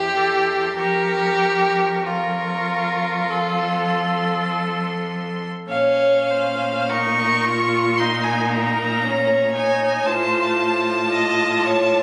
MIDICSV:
0, 0, Header, 1, 5, 480
1, 0, Start_track
1, 0, Key_signature, -5, "minor"
1, 0, Tempo, 1255230
1, 304, Time_signature, 4, 2, 24, 8
1, 1261, Tempo, 1197605
1, 2701, Tempo, 1077199
1, 3181, Tempo, 1041667
1, 5052, End_track
2, 0, Start_track
2, 0, Title_t, "Violin"
2, 0, Program_c, 0, 40
2, 0, Note_on_c, 0, 84, 59
2, 304, Note_on_c, 0, 85, 48
2, 310, Note_off_c, 0, 84, 0
2, 789, Note_off_c, 0, 85, 0
2, 792, Note_on_c, 0, 85, 60
2, 1263, Note_on_c, 0, 84, 64
2, 1269, Note_off_c, 0, 85, 0
2, 2138, Note_off_c, 0, 84, 0
2, 2223, Note_on_c, 0, 77, 96
2, 2702, Note_on_c, 0, 85, 109
2, 2708, Note_off_c, 0, 77, 0
2, 3186, Note_on_c, 0, 84, 99
2, 3193, Note_off_c, 0, 85, 0
2, 3305, Note_on_c, 0, 80, 88
2, 3312, Note_off_c, 0, 84, 0
2, 3432, Note_on_c, 0, 82, 91
2, 3439, Note_off_c, 0, 80, 0
2, 3907, Note_off_c, 0, 82, 0
2, 3912, Note_on_c, 0, 80, 91
2, 4145, Note_on_c, 0, 81, 109
2, 4152, Note_off_c, 0, 80, 0
2, 5052, Note_off_c, 0, 81, 0
2, 5052, End_track
3, 0, Start_track
3, 0, Title_t, "Violin"
3, 0, Program_c, 1, 40
3, 0, Note_on_c, 1, 67, 95
3, 293, Note_off_c, 1, 67, 0
3, 300, Note_on_c, 1, 67, 102
3, 782, Note_on_c, 1, 65, 68
3, 788, Note_off_c, 1, 67, 0
3, 1980, Note_off_c, 1, 65, 0
3, 2223, Note_on_c, 1, 73, 85
3, 2467, Note_on_c, 1, 72, 81
3, 2473, Note_off_c, 1, 73, 0
3, 2711, Note_on_c, 1, 70, 77
3, 2718, Note_off_c, 1, 72, 0
3, 3188, Note_off_c, 1, 70, 0
3, 3195, Note_on_c, 1, 70, 73
3, 3678, Note_on_c, 1, 73, 83
3, 3685, Note_off_c, 1, 70, 0
3, 4153, Note_on_c, 1, 72, 85
3, 4160, Note_off_c, 1, 73, 0
3, 4386, Note_off_c, 1, 72, 0
3, 4395, Note_on_c, 1, 72, 78
3, 4625, Note_off_c, 1, 72, 0
3, 4639, Note_on_c, 1, 75, 83
3, 4881, Note_on_c, 1, 73, 81
3, 4888, Note_off_c, 1, 75, 0
3, 5052, Note_off_c, 1, 73, 0
3, 5052, End_track
4, 0, Start_track
4, 0, Title_t, "Viola"
4, 0, Program_c, 2, 41
4, 0, Note_on_c, 2, 67, 60
4, 61, Note_on_c, 2, 69, 55
4, 67, Note_off_c, 2, 67, 0
4, 299, Note_off_c, 2, 69, 0
4, 301, Note_on_c, 2, 70, 57
4, 779, Note_off_c, 2, 70, 0
4, 791, Note_on_c, 2, 70, 55
4, 1263, Note_on_c, 2, 69, 61
4, 1269, Note_off_c, 2, 70, 0
4, 2138, Note_off_c, 2, 69, 0
4, 2226, Note_on_c, 2, 61, 72
4, 2710, Note_on_c, 2, 63, 73
4, 2717, Note_off_c, 2, 61, 0
4, 2954, Note_on_c, 2, 65, 83
4, 2960, Note_off_c, 2, 63, 0
4, 3194, Note_on_c, 2, 63, 69
4, 3201, Note_off_c, 2, 65, 0
4, 3676, Note_on_c, 2, 61, 74
4, 3683, Note_off_c, 2, 63, 0
4, 3909, Note_off_c, 2, 61, 0
4, 3912, Note_on_c, 2, 63, 74
4, 4148, Note_on_c, 2, 65, 70
4, 4155, Note_off_c, 2, 63, 0
4, 4626, Note_off_c, 2, 65, 0
4, 4628, Note_on_c, 2, 65, 78
4, 5052, Note_off_c, 2, 65, 0
4, 5052, End_track
5, 0, Start_track
5, 0, Title_t, "Cello"
5, 0, Program_c, 3, 42
5, 0, Note_on_c, 3, 40, 72
5, 285, Note_off_c, 3, 40, 0
5, 300, Note_on_c, 3, 41, 66
5, 1245, Note_off_c, 3, 41, 0
5, 1256, Note_on_c, 3, 41, 72
5, 2118, Note_off_c, 3, 41, 0
5, 2220, Note_on_c, 3, 46, 93
5, 4121, Note_off_c, 3, 46, 0
5, 4144, Note_on_c, 3, 45, 98
5, 5052, Note_off_c, 3, 45, 0
5, 5052, End_track
0, 0, End_of_file